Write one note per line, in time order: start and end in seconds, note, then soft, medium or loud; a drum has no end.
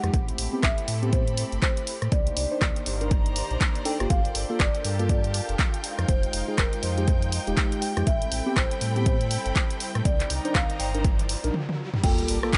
0.00 0.10 F2 medium
0.00 0.11 G#3 medium
0.00 0.13 G#3 medium
0.00 0.12 G#3 medium
0.00 0.11 D#4 medium
0.00 0.14 D#4 medium
0.00 0.12 D#4 medium
0.00 0.11 F4 medium
0.00 2.92 G4 medium
0.00 8.03 G4 medium
0.00 0.12 G4 medium
0.00 0.11 C5 medium
0.00 0.13 F5 medium
0.00 0.65 F#5 loud
0.00 cross-stick medium
0.00 closed hi-hat soft
0.14 0.32 A1 loud
0.14 2.10 A3 medium
0.14 2.92 C4 medium
0.14 2.10 C4 medium
0.14 2.10 E4 medium
0.14 2.10 B5 medium
0.14 kick loud
0.14 closed hi-hat medium
0.28 2.12 A4 medium
0.28 closed hi-hat medium
0.38 0.48 A1 medium
0.38 open hi-hat loud
0.53 0.63 B3 medium
0.53 0.63 C4 medium
0.53 0.63 G4 loud
0.63 0.73 A1 loud
0.63 1.14 E5 loud
0.63 kick loud
0.63 cross-stick medium
0.63 clap loud
0.63 closed hi-hat medium
0.78 closed hi-hat soft
0.88 1.44 A2 medium
0.88 open hi-hat loud
1.03 1.21 B3 medium
1.03 1.21 C4 medium
1.03 1.21 G4 medium
1.03 2.12 B5 medium
1.03 closed hi-hat soft
1.13 1.59 C5 loud
1.13 kick loud
1.13 closed hi-hat medium
1.28 closed hi-hat medium
1.37 open hi-hat loud
1.52 1.59 G1 medium
1.52 closed hi-hat soft
1.62 2.13 C5 medium
1.62 kick loud
1.62 clap loud
1.62 closed hi-hat medium
1.77 closed hi-hat medium
1.87 open hi-hat loud
2.02 2.09 A2 medium
2.02 cross-stick medium
2.02 closed hi-hat soft
2.12 2.30 C2 loud
2.12 4.10 D#3 medium
2.12 4.08 A#3 medium
2.12 4.08 D4 medium
2.12 4.08 D#4 medium
2.12 4.08 C5 medium
2.12 2.35 D5 loud
2.12 kick loud
2.12 closed hi-hat medium
2.27 closed hi-hat soft
2.37 2.47 C2 medium
2.37 3.90 D5 loud
2.37 open hi-hat loud
2.45 4.78 C5 medium
2.51 2.61 D4 medium
2.51 2.61 D#4 medium
2.51 2.61 C5 medium
2.61 2.71 C2 loud
2.61 kick loud
2.61 cross-stick medium
2.61 clap loud
2.61 closed hi-hat medium
2.76 closed hi-hat soft
2.86 3.43 G1 medium
2.86 open hi-hat loud
2.95 4.81 D5 medium
3.01 3.11 D4 medium
3.01 3.11 D#4 medium
3.01 3.11 A#4 medium
3.01 4.10 A#5 medium
3.01 closed hi-hat soft
3.11 kick loud
3.11 closed hi-hat medium
3.26 closed hi-hat medium
3.36 open hi-hat loud
3.51 3.57 A#1 medium
3.51 closed hi-hat soft
3.61 kick loud
3.61 clap loud
3.61 closed hi-hat medium
3.75 closed hi-hat medium
3.85 3.97 D4 medium
3.85 3.97 D#4 medium
3.85 3.97 A4 loud
3.85 4.11 G5 loud
3.85 open hi-hat loud
4.00 4.07 G1 medium
4.00 4.19 A#3 medium
4.00 4.19 F4 medium
4.00 4.19 G4 loud
4.00 cross-stick medium
4.00 closed hi-hat soft
4.10 4.28 G1 loud
4.10 5.82 D4 medium
4.10 8.03 F4 medium
4.10 5.84 G4 medium
4.10 5.82 A4 medium
4.10 5.82 A#4 medium
4.10 4.56 F5 loud
4.10 11.54 G5 medium
4.10 11.54 G6 medium
4.10 kick loud
4.10 closed hi-hat medium
4.25 closed hi-hat soft
4.35 4.45 G1 medium
4.35 open hi-hat loud
4.50 4.60 A#3 loud
4.50 4.60 F4 medium
4.50 4.60 A4 loud
4.60 4.70 G1 loud
4.60 5.06 D5 medium
4.60 kick loud
4.60 cross-stick medium
4.60 clap loud
4.60 closed hi-hat medium
4.75 closed hi-hat medium
4.85 5.41 G2 medium
4.85 open hi-hat loud
4.89 8.07 F5 medium
4.89 5.84 A5 medium
4.99 5.18 A#3 medium
4.99 5.18 F4 medium
4.99 5.18 A4 medium
4.99 closed hi-hat soft
5.09 6.04 D5 medium
5.09 kick loud
5.09 closed hi-hat medium
5.24 closed hi-hat medium
5.34 open hi-hat loud
5.49 5.56 F1 medium
5.49 closed hi-hat soft
5.59 kick loud
5.59 clap loud
5.59 closed hi-hat medium
5.74 closed hi-hat medium
5.84 8.05 G#3 medium
5.84 8.05 D#4 medium
5.84 8.07 D#4 medium
5.84 8.05 C5 medium
5.84 open hi-hat loud
5.99 6.05 F2 medium
5.99 cross-stick medium
5.99 closed hi-hat soft
6.08 6.27 F1 loud
6.08 6.60 C5 medium
6.08 kick loud
6.08 closed hi-hat medium
6.23 closed hi-hat medium
6.33 6.43 F1 medium
6.33 8.07 G#3 medium
6.33 open hi-hat loud
6.48 6.58 G#3 medium
6.48 6.58 D#4 medium
6.48 6.58 G#4 medium
6.58 6.68 F1 loud
6.58 6.81 A#4 medium
6.58 kick loud
6.58 cross-stick medium
6.58 clap loud
6.58 closed hi-hat medium
6.73 closed hi-hat medium
6.83 7.39 F2 medium
6.83 7.85 C5 medium
6.83 10.86 G5 medium
6.83 open hi-hat loud
6.98 7.08 G#3 medium
6.98 7.08 D#4 medium
6.98 7.08 G4 medium
6.98 closed hi-hat soft
7.08 kick loud
7.08 closed hi-hat medium
7.22 closed hi-hat medium
7.32 open hi-hat loud
7.47 7.54 D#1 medium
7.47 7.93 G#3 medium
7.47 7.93 D#4 medium
7.47 7.94 G4 medium
7.47 closed hi-hat soft
7.57 kick loud
7.57 clap loud
7.57 closed hi-hat medium
7.72 closed hi-hat medium
7.82 8.05 G5 loud
7.82 open hi-hat loud
7.97 8.04 F2 medium
7.97 8.06 G#3 medium
7.97 8.06 D#4 medium
7.97 8.06 G4 medium
7.97 cross-stick medium
7.97 closed hi-hat soft
8.06 8.25 A1 loud
8.06 11.51 G3 medium
8.06 10.86 C4 medium
8.06 11.51 C4 medium
8.06 10.03 E4 medium
8.06 10.03 A4 medium
8.06 8.58 E5 loud
8.06 10.03 B5 medium
8.06 kick loud
8.06 closed hi-hat medium
8.06 riser medium
8.20 10.05 A4 medium
8.20 closed hi-hat medium
8.32 8.42 A1 medium
8.32 open hi-hat loud
8.46 8.56 B3 loud
8.46 8.56 C4 medium
8.46 8.56 G4 loud
8.56 8.66 A1 loud
8.56 9.05 C5 medium
8.56 kick loud
8.56 cross-stick medium
8.56 clap loud
8.56 closed hi-hat medium
8.71 closed hi-hat medium
8.81 9.38 A2 medium
8.81 open hi-hat loud
8.92 10.05 B5 medium
8.96 9.15 B3 medium
8.96 9.15 C4 medium
8.96 9.15 G4 medium
8.96 closed hi-hat soft
9.06 10.01 C5 medium
9.06 kick loud
9.06 closed hi-hat medium
9.21 closed hi-hat medium
9.31 open hi-hat loud
9.46 9.52 G1 loud
9.46 closed hi-hat soft
9.56 kick loud
9.56 clap loud
9.56 closed hi-hat medium
9.71 closed hi-hat medium
9.80 open hi-hat loud
9.95 10.02 A2 medium
9.95 cross-stick medium
9.95 closed hi-hat soft
10.05 10.23 C2 loud
10.05 11.53 D#4 medium
10.05 11.54 D#4 medium
10.05 11.53 A#4 medium
10.05 10.51 D5 medium
10.05 11.53 D5 medium
10.05 kick loud
10.05 closed hi-hat medium
10.20 clap soft
10.20 closed hi-hat medium
10.30 10.40 C2 medium
10.30 11.54 A#5 medium
10.30 open hi-hat loud
10.45 10.55 D4 medium
10.45 10.55 D#4 medium
10.45 10.55 C5 medium
10.45 closed hi-hat soft
10.53 10.65 C2 loud
10.53 11.54 C5 medium
10.53 10.80 F5 medium
10.53 kick loud
10.53 cross-stick medium
10.53 clap loud
10.53 closed hi-hat medium
10.70 closed hi-hat medium
10.80 11.36 G1 medium
10.80 11.50 G5 medium
10.80 open hi-hat loud
10.94 11.04 D4 medium
10.94 11.04 D#4 medium
10.94 11.04 A#4 medium
10.94 11.54 D5 medium
10.94 closed hi-hat soft
11.04 kick loud
11.04 closed hi-hat medium
11.19 closed hi-hat medium
11.29 open hi-hat loud
11.44 11.51 A#1 loud
11.44 11.54 D4 medium
11.44 11.54 D#4 medium
11.44 11.54 A#4 loud
11.44 closed hi-hat soft
11.54 high tom medium
11.69 high tom medium
11.94 mid tom medium
12.03 12.22 G1 loud
12.03 12.58 G3 medium
12.03 12.37 A#3 loud
12.03 12.58 A#3 medium
12.03 12.37 F4 medium
12.03 12.58 F4 medium
12.03 12.58 G4 medium
12.03 12.37 A4 loud
12.03 12.58 A#4 medium
12.03 12.58 D5 medium
12.03 12.58 G5 loud
12.03 12.58 A5 medium
12.03 12.58 D6 medium
12.03 kick loud
12.03 closed hi-hat medium
12.03 crash loud
12.03 sub drop medium
12.18 closed hi-hat medium
12.28 12.38 G1 medium
12.28 open hi-hat loud
12.43 12.53 A#3 loud
12.43 12.53 F4 medium
12.43 12.53 A4 loud
12.43 cross-stick medium
12.53 12.58 G1 loud
12.53 kick loud
12.53 clap loud
12.53 closed hi-hat medium